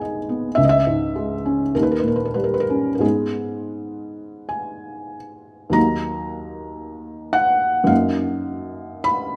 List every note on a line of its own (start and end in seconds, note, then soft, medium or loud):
0.00 0.54 G#1 medium
0.00 0.60 D#2 soft
0.00 0.60 G#3 soft
0.00 0.29 B3 soft
0.00 0.60 D#4 soft
0.00 0.17 G#4 soft
0.00 0.60 G#5 medium
0.00 0.60 B5 medium
0.29 0.58 B3 soft
0.55 1.70 C#2 medium
0.55 0.63 E5 medium
0.65 0.72 D#5 medium
0.69 1.73 E5 medium
0.87 1.33 G#2 soft
1.16 1.62 G#3 soft
1.45 1.74 C#4 soft
1.75 3.00 D#2 soft
1.75 1.83 A#4 medium
1.83 1.91 B4 medium
1.92 2.00 A#4 medium
2.00 2.55 A#2 soft
2.00 2.08 B4 medium
2.08 2.17 A#4 soft
2.16 2.25 B4 soft
2.25 2.35 A#4 soft
2.34 2.89 G3 soft
2.34 2.44 B4 soft
2.44 2.53 A#4 soft
2.54 2.63 B4 medium
2.60 2.93 A#4 medium
2.70 3.04 C#4 soft
2.95 3.03 A#4 soft
2.99 5.70 G#2 soft
2.99 5.71 G#3 soft
2.99 5.71 B3 soft
2.99 5.72 D#4 soft
2.99 5.16 G#4 medium
4.49 5.75 G#5 medium
5.70 7.83 D#2 soft
5.70 7.83 F#3 soft
5.70 7.85 A#3 soft
5.70 7.35 A#5 medium
5.74 7.86 D#4 soft
7.33 7.88 F#5 medium
7.84 9.36 F#2 soft
7.84 9.36 F#3 soft
7.84 9.36 A#3 soft
7.84 9.36 D#4 soft
7.84 9.06 F5 medium
9.04 9.36 B5 medium